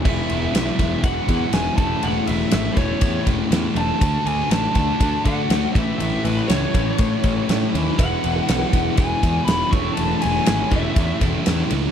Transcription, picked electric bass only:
\new Staff \with { instrumentName = "Picked electric bass" } { \clef bass \time 4/4 \key a \major \tempo 4 = 121 e,,8 e,,8 b,,8 e,,8 e,,8 e,8 e,,8 e,,8 | e,,8 e,,8 gis,,8 e,,8 e,8 e,,8 e,8 e,,8 | d,8 d,8 a,,8 d,8 d,8 d8 d,8 a,,8 | a,,8 a,,8 cis,8 a,,8 a,8 a,,8 a,8 dis,8 |
e,,8 e,,8 b,,8 e,,8 e,,8 e,8 e,,8 e,,8 | e,,8 e,,8 gis,,8 e,,8 e,8 e,,8 e,8 cis,8 | }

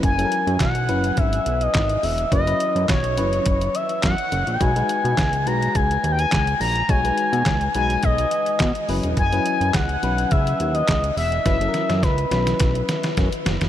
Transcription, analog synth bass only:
\new Staff \with { instrumentName = "Analog synth bass" } { \clef bass \time 4/4 \key fis \mixolydian \tempo 4 = 105 fis,,8 r16 fis,16 b,,8 fis,,8 gis,,8 b,,8 gis,,8 e,,8 | fis,,8 r16 fis,16 b,,8 fis,,8 fis,,8 r8 fis,16 r16 fis,,16 ais,,16 | b,,8 r16 b,16 cis,8 b,,8 cis,8 dis,8 cis,8 ais,,8 | b,,8 r16 b,16 cis,8 b,,8 b,,8 r8 b,16 r16 fis,,16 e,,16 |
fis,,8 r16 fis,16 cis,8 b,,8 cis,8 dis,8 cis,8 e,,8 | fis,,8 r16 fis,16 cis,8 b,,8 b,,8 r8 fis,16 r16 fis,,16 fis,,16 | }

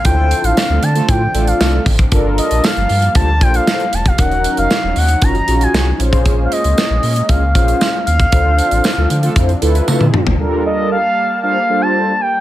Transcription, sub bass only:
\new Staff \with { instrumentName = "Sub bass" } { \clef bass \time 4/4 \key g \minor \tempo 4 = 116 d,8. a,,16 r16 d,16 d8 a,8 a,,8 c,8 aes,,8 | g,,8. bes,,16 r16 g,,16 g,8 d,8 bes,,8 r8 e,,8 | ees,,8. f,,16 r16 ees,,16 ees,8 ges,,8 bes,,8 c,8 bes,,8~ | bes,,8. des,16 r16 bes,,16 bes,8 des,8 bes,,8 r8 ees,8 |
d,8. a,,16 r16 d,16 d8 f,8 d,8 r16 d16 r16 aes,,16 | r1 | }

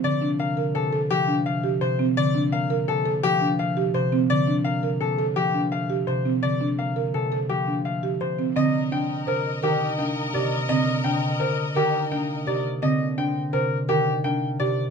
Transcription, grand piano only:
\new Staff \with { instrumentName = "Grand piano" } { \time 6/4 \key g \minor \tempo 4 = 169 d''8 r8 f''8 r8 a'8 r8 g'8 r8 f''8 r8 c''8 r8 | d''8 r8 f''8 r8 a'8 r8 g'8 r8 f''8 r8 c''8 r8 | d''8 r8 f''8 r8 a'8 r8 g'8 r8 f''8 r8 c''8 r8 | d''8 r8 f''8 r8 a'8 r8 g'8 r8 f''8 r8 c''8 r8 |
\key c \minor ees''8 r8 g''8 r8 bes'8 r8 g'8 r8 g''8 r8 d''8 r8 | ees''8 r8 g''8 r8 bes'8 r8 g'8 r8 g''8 r8 d''8 r8 | ees''8 r8 g''8 r8 bes'8 r8 g'8 r8 g''8 r8 d''8 r8 | }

